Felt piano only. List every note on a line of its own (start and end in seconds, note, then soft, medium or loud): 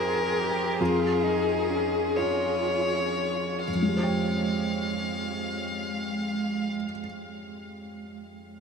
0.00 0.76 F2 soft
0.00 0.76 C5 soft
0.00 0.76 G5 soft
0.81 3.64 F2 soft
2.18 3.64 G#4 soft
2.18 3.64 C#5 soft
3.68 6.69 F2 soft
3.75 6.76 F3 soft
3.82 6.83 G#3 soft
3.89 6.90 G4 soft
3.97 6.98 C5 soft
4.03 7.05 G5 soft